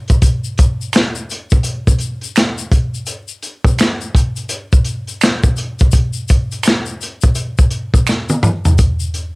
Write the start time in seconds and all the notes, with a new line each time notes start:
0.08 kick, closed hi-hat, shaker
0.22 kick, closed hi-hat, shaker
0.44 shaker
0.58 kick, closed hi-hat, shaker
0.81 shaker
0.93 finger snap, snare, closed hi-hat, shaker
0.96 finger snap
1.15 shaker
1.30 closed hi-hat, shaker
1.50 kick, shaker
1.63 closed hi-hat, shaker
1.87 kick, shaker
1.98 closed hi-hat, shaker
2.21 closed hi-hat, shaker
2.36 finger snap, snare, shaker
2.38 finger snap, closed hi-hat
2.58 shaker
2.72 kick, closed hi-hat, shaker
2.94 shaker
3.06 closed hi-hat, shaker
3.28 shaker
3.43 closed hi-hat, shaker
3.64 kick, shaker
3.78 finger snap, snare, closed hi-hat, shaker
3.81 finger snap
4.01 shaker
4.15 kick, closed hi-hat, shaker
4.36 closed hi-hat, shaker
4.49 closed hi-hat, shaker
4.72 kick, shaker
4.85 closed hi-hat, shaker
5.07 closed hi-hat, shaker
5.21 finger snap, snare, shaker
5.24 finger snap, closed hi-hat
5.43 kick, shaker
5.56 closed hi-hat, shaker
5.79 kick, closed hi-hat, shaker
5.92 kick, closed hi-hat, shaker
6.13 shaker
6.28 kick, closed hi-hat, shaker
6.52 closed hi-hat, shaker
6.63 finger snap, closed hi-hat, shaker
6.68 finger snap, snare
6.86 shaker
7.01 closed hi-hat, shaker
7.21 kick, closed hi-hat, shaker
7.35 closed hi-hat, shaker
7.58 kick, shaker
7.70 closed hi-hat, shaker
7.94 kick, shaker
8.07 finger snap, snare, shaker
8.29 high tom, shaker
8.43 mid tom, shaker
8.65 floor tom, shaker
8.78 kick, closed hi-hat, shaker
9.00 shaker
9.14 closed hi-hat, shaker